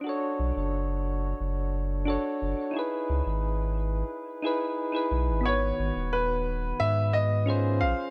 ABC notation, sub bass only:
X:1
M:4/4
L:1/16
Q:1/4=89
K:G#m
V:1 name="Sub bass" clef=bass
z2 B,,, F,,,4- F,,, F,,,4- F,,, z F,,, z | z2 C,, G,,,4- G,,, z6 B,,, G,,,- | G,,,2 G,,, D,,,4- D,,, G,,6 A,,, z |]